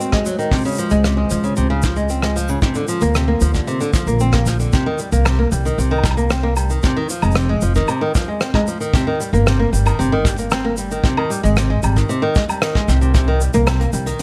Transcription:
Already playing: G#3 F#4 C5
0.00 C4, shaker
0.12 G#3, kick, cross-stick
0.26 F#3, shaker
0.39 D#3, shaker
0.51 C3 F4, kick, shaker
0.55 shaker
0.58 shaker
0.61 shaker
0.64 C#3, shaker
0.67 shaker
0.71 shaker
0.74 shaker
0.78 F3, shaker
0.90 C#2 G#3, shaker
1.04 C3, cross-stick, shaker
1.17 G#3
1.30 C#2 F3, shaker
1.44 C#3, shaker
1.56 C#2 C3, shaker
1.70 C#3
1.83 F3, kick, shaker
1.96 G#3, shaker
2.09 C4, shaker
2.22 G#3, cross-stick
2.36 F3, shaker
2.48 C#3, shaker
2.62 C3 D3 A#3 F4, kick, shaker
2.75 D3, shaker
2.88 F3, shaker
3.01 D2 A#3, shaker
3.15 C3, cross-stick, shaker
3.28 A#3
3.41 D2 F3, shaker
3.54 D3, kick, shaker
3.67 C3, shaker
3.81 D3, shaker
3.93 F3, kick, shaker
4.06 A#1 A#3, shaker
4.20 C4, shaker
4.33 A#3, kick, cross-stick, shaker
4.46 F3, kick, shaker
4.60 D3, shaker
4.73 C3, kick, shaker
4.86 D#3
4.99 G3, shaker
5.12 C2 A#3, shaker
5.25 C3, cross-stick, low woodblock, shaker
5.39 A#3
5.52 C2 G3, shaker
5.65 D#3, shaker
5.78 C2 C3, shaker
5.91 D#3, low woodblock
5.98 low woodblock
6.04 G3, kick, low woodblock, shaker
6.11 low woodblock
6.17 A#3, shaker
6.30 C4, cross-stick, shaker
6.43 A#3
6.56 G3, low woodblock, shaker
6.70 D#3, shaker
6.83 C3, kick, shaker
6.97 D#3
7.09 F3, shaker
7.22 F1 G#3, low woodblock, shaker
7.31 shaker
7.35 C3, cross-stick, shaker
7.40 shaker
7.49 G#3
7.61 F1 F3, shaker
7.75 D#3, kick, shaker
7.88 C3, low woodblock, shaker
8.01 D#3
8.15 F3, kick, shaker
8.28 G#3
8.41 C4, cross-stick, shaker
8.54 G#3, kick, low woodblock
8.67 F3, shaker
8.80 D#3, shaker
8.94 C3, kick, shaker
9.07 D#3
9.20 G3, shaker
9.33 G1 A#3, shaker
9.46 C3, cross-stick, shaker
9.59 A#3
9.73 G1 G3, shaker
9.86 D#3, low woodblock, shaker
9.99 G1 C3, shaker
10.12 D#3
10.25 G3, kick, shaker
10.38 A#3, shaker
10.51 C4, cross-stick, low woodblock, shaker
10.65 A#3
10.77 G3, shaker
10.91 D#3, shaker
11.04 C3, kick, shaker
11.17 D#3, low woodblock
11.30 G3, shaker
11.43 G#1 G#3, shaker
11.57 C3, cross-stick, shaker
11.70 G#3
11.83 G#1 G3, low woodblock, shaker
11.96 D#3, kick, shaker
12.09 C3, shaker
12.22 D#3
12.35 G#3, kick, shaker
12.49 G3, low woodblock, shaker
12.62 D#3, cross-stick, shaker
12.75 G#3, kick
12.88 C2 C3, kick, shaker
13.01 C3, shaker
13.14 C3, kick, closed hi-hat, shaker
13.28 D#3
13.41 G3, shaker
13.53 C2 A#3, closed hi-hat, shaker
13.67 C3, cross-stick, closed hi-hat, low woodblock, shaker
13.80 A#3, closed hi-hat
13.93 C2 G3, shaker
14.06 D#3, closed hi-hat, shaker
14.19 closed hi-hat

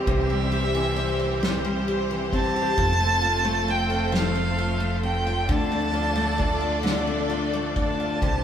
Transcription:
Already playing: E3 G3 C4 G4 C5
0.07 C2 C3 E5, kick, ride
0.30 G3
0.52 G4, ride
0.75 E3
0.96 C4, ride
1.20 G4
1.42 C3, snare, ride
1.65 G3
1.88 G4, ride
2.11 E3
2.33 C4 A5, kick, ride
2.56 G4
2.77 F1 F3 A3 A4, kick
3.00 A3
3.21 F4, ride
3.45 A3
3.68 C4 G5
3.90 F4
4.12 F3 F5, snare, ride
4.36 A3
4.59 F4, ride
4.80 A3
5.03 C4 G5, ride
5.27 F4
5.49 D2 D3 A3 D4 A4 D5 A5, kick, ride
5.72 A3
5.94 F4, ride
6.16 A3
6.38 D4, kick
6.61 F4
6.83 D3, snare, ride
7.07 A3
7.30 F4, ride
7.53 A3
7.75 D4 A5, kick, ride
8.00 F4
8.22 C2 C3 E3 G3 C4 G4 C5, kick

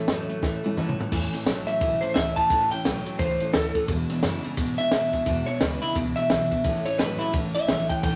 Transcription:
Already playing: A3
0.07 F#2 A2 E3 F#3 A3 C#4 E4, snare, closed hi-hat
0.28 A2 F#3 A3 C#4 E4, muted upright bass stroke, closed hi-hat
0.42 E2 A2 E3 A3 C#4 E4, kick, snare
0.63 A2 E3 A3 C#4 E4, muted upright bass stroke, high tom
0.77 G#2 A2 E3 A3 C#4 E4, mid tom
0.89 mid tom
0.98 A2 E3 A3 C#4 E4, muted upright bass stroke, floor tom
1.11 E2 A2 E3 A3 C#4 E4, kick, crash
1.32 A2 E3 A3 C#4 E4, muted upright bass stroke, snare, ride
1.46 A1 A2 E3 F#3 A3 C#4 E4, snare, ride
1.67 A2 F#3 A3 C#4 E4 E5, muted upright bass stroke, ride
1.80 B1 A2 E3 A3 C#4 E4, kick, ride
2.01 A2 E3 A3 C#4 E4 C5, muted upright bass stroke, ride
2.14 C#2 A2 E3 A3 C#4 E4 E5, snare, ride
2.36 A2 E3 A3 C#4 E4 A5, muted upright bass stroke, kick, ride
2.50 A1 A2 E3 A3 C#4 E4, kick, ride
2.71 A2 E3 A3 C#4 E4 G5, muted upright bass stroke, ride
2.84 B1 A2 E3 F#3 A3 C#4 E4, snare, ride
3.05 A2 F#3 A3 C#4 E4, muted upright bass stroke, ride
3.19 C#2 A2 E3 A3 C#4 E4 C5, kick, ride
3.40 A2 E3 A3 C#4 E4, muted upright bass stroke, ride
3.53 D2 A2 E3 A3 C#4 E4 A4, snare, ride
3.75 A2 E3 A3 C#4 E4, muted upright bass stroke, kick, ride
3.88 E2 B2 E3 G#3 D4 E4, kick, ride
4.10 E2 B2 E3 G#3 D4 E4, muted upright bass stroke, snare, ride
4.23 E2 F#2 B2 C#3 E3 G#3 D4 E4, snare, ride
4.44 E2 C#3 E3 G#3 D4 E4, muted upright bass stroke, ride
4.57 E2 G#2 B2 E3 G#3 D4 E4, kick, ride
4.78 E2 B2 E3 G#3 D4 E4 E5, muted upright bass stroke, ride
4.91 E2 G#2 B2 E3 G#3 D4 E4, snare, ride
5.12 E2 B2 E3 G#3 D4 E4, kick, ride
5.26 E2 B2 E3 G#3 D4 E4, kick, ride
5.47 E2 B2 E3 G#3 D4 E4 C#5, muted upright bass stroke, ride
5.61 D2 E2 B2 C#3 E3 G#3 D4 E4 B4, snare, ride
5.82 E2 C#3 E3 G#3 D4 E4, muted upright bass stroke, ride
5.95 C#2 E2 B2 E3 G#3 D4 E4, kick, ride
6.16 E2 B2 E3 G#3 D4 E4 E5, muted upright bass stroke, ride
6.30 B1 E2 B2 E3 G#3 D4 E4, snare, ride
6.51 E2 B2 E3 G#3 D4 E4, muted upright bass stroke, kick, ride
6.64 A1 A2 E3 A3 C#4 E4, kick, ride
6.86 A2 E3 A3 C#4 E4 C#5, muted upright bass stroke, ride
6.99 G#1 A2 E3 F#3 A3 C#4 E4 B4, snare, ride
7.19 A2 F#3 C#4 E4, muted upright bass stroke, ride
7.24 A3
7.33 A1 A2 E3 A3 C#4, kick, ride
7.37 E4
7.54 A2 E3 C#4 E4 E5, muted upright bass stroke, ride
7.58 A3
7.68 A#1 A2 E3 A3 C#4 E4, snare, ride
7.89 A2 E3 A3 C#4 E4 G5, muted upright bass stroke, kick, ride
8.03 A1 A2 E3 A3 C#4 E4 G5, kick, ride

